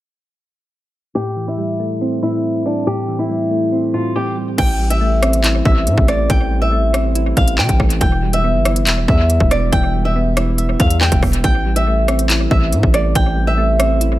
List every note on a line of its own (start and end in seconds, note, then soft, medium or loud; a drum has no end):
1.15 2.22 A2 medium
1.15 1.45 G4 loud
1.36 2.44 E3 medium
1.48 1.98 E4 medium
1.58 2.64 G3 medium
1.80 2.87 A3 medium
2.01 3.08 C4 loud
2.23 2.86 A2 medium
2.23 2.63 E4 medium
2.66 3.28 G3 medium
2.66 2.86 D4 medium
2.87 3.93 A2 medium
2.87 3.17 G4 loud
3.08 4.15 E3 medium
3.19 3.69 E4 medium
3.29 4.36 G3 medium
3.51 4.58 A3 medium
3.72 4.58 C4 medium
3.94 4.58 A2 medium
3.94 4.14 F4 medium
4.16 4.36 G4 medium
4.37 4.58 G3 medium
4.58 5.61 A1 loud
4.58 5.65 E3 loud
4.58 4.89 G5 loud
4.58 kick loud
4.58 closed hi-hat medium
4.58 crash loud
4.80 5.87 G3 medium
4.90 5.41 E5 medium
4.90 closed hi-hat medium
5.01 6.07 A3 medium
5.22 6.30 C4 loud
5.22 cross-stick loud
5.22 closed hi-hat medium
5.33 closed hi-hat medium
5.44 6.51 E4 loud
5.44 clap loud
5.44 closed hi-hat medium
5.65 5.88 A1 loud
5.65 6.28 E3 medium
5.65 6.06 E5 medium
5.65 kick loud
5.87 5.97 A2 loud
5.87 closed hi-hat medium
5.98 6.28 A1 loud
5.98 kick loud
6.08 6.71 A3 medium
6.08 6.28 D5 medium
6.08 cross-stick medium
6.08 closed hi-hat medium
6.30 7.33 A1 loud
6.30 7.35 E3 loud
6.30 6.60 G5 loud
6.30 kick loud
6.30 closed hi-hat medium
6.51 7.58 G3 medium
6.62 7.12 E5 medium
6.72 7.78 A3 medium
6.93 8.01 C4 medium
6.93 cross-stick loud
6.93 closed hi-hat medium
7.15 8.01 E4 loud
7.15 closed hi-hat medium
7.37 7.60 A1 loud
7.37 8.00 E3 medium
7.37 7.57 F5 medium
7.37 kick loud
7.37 closed hi-hat medium
7.48 closed hi-hat medium
7.58 7.68 C3 loud
7.58 7.79 G5 medium
7.58 clap loud
7.69 7.79 A1 loud
7.69 kick loud
7.69 closed hi-hat medium
7.79 8.00 A1 loud
7.79 8.01 A3 medium
7.79 kick loud
7.79 cross-stick medium
7.90 closed hi-hat loud
8.01 8.56 E1 loud
8.01 9.07 E3 loud
8.01 8.31 G5 loud
8.01 kick loud
8.01 closed hi-hat medium
8.23 9.30 G3 medium
8.33 8.84 E5 medium
8.33 closed hi-hat medium
8.44 9.50 B3 medium
8.55 8.83 G1 loud
8.65 9.73 E4 medium
8.65 cross-stick loud
8.65 closed hi-hat medium
8.76 closed hi-hat medium
8.82 9.07 E1 loud
8.86 9.94 E5 medium
8.86 clap loud
8.86 closed hi-hat medium
9.08 9.39 E2 loud
9.08 9.72 E3 medium
9.08 9.49 E5 medium
9.08 kick loud
9.30 closed hi-hat medium
9.40 9.71 E1 loud
9.40 kick loud
9.51 10.15 B3 medium
9.51 9.71 D5 medium
9.51 cross-stick medium
9.51 closed hi-hat medium
9.72 10.76 E1 loud
9.72 10.79 E3 loud
9.72 10.03 G5 loud
9.72 kick loud
9.72 closed hi-hat medium
9.94 11.01 G3 medium
10.05 10.55 E5 medium
10.16 11.21 B3 medium
10.37 11.44 E4 medium
10.37 cross-stick loud
10.37 closed hi-hat medium
10.58 11.44 E5 medium
10.58 closed hi-hat medium
10.80 11.11 E2 loud
10.80 11.42 E3 medium
10.80 11.00 F5 medium
10.80 kick loud
10.80 closed hi-hat medium
10.90 closed hi-hat medium
11.01 11.21 G5 medium
11.01 clap loud
11.12 11.22 E1 loud
11.12 kick loud
11.12 closed hi-hat medium
11.22 11.43 E1 loud
11.22 11.44 B3 medium
11.22 kick loud
11.22 cross-stick medium
11.22 open hi-hat soft
11.33 closed hi-hat medium
11.43 12.47 A1 loud
11.43 12.51 E3 loud
11.43 11.74 G5 loud
11.43 kick loud
11.43 closed hi-hat medium
11.66 12.73 G3 medium
11.76 12.26 E5 medium
11.76 closed hi-hat medium
11.87 12.93 A3 medium
12.08 13.15 C4 medium
12.08 cross-stick loud
12.08 closed hi-hat medium
12.19 closed hi-hat medium
12.30 13.37 E4 loud
12.30 clap loud
12.30 closed hi-hat medium
12.51 12.74 A1 loud
12.51 13.14 E3 medium
12.51 12.91 E5 medium
12.51 kick loud
12.72 12.83 A2 loud
12.72 closed hi-hat medium
12.83 13.14 A1 loud
12.83 kick loud
12.94 13.56 A3 medium
12.94 13.14 D5 medium
12.94 cross-stick medium
12.94 closed hi-hat medium
13.15 14.19 A1 loud
13.15 14.19 E3 loud
13.15 13.46 G5 loud
13.15 kick loud
13.15 closed hi-hat medium
13.37 14.19 G3 medium
13.47 13.98 E5 medium
13.58 14.19 A3 medium
13.79 14.19 C4 medium
13.79 cross-stick loud
13.79 closed hi-hat medium
14.01 14.19 E4 loud
14.01 closed hi-hat medium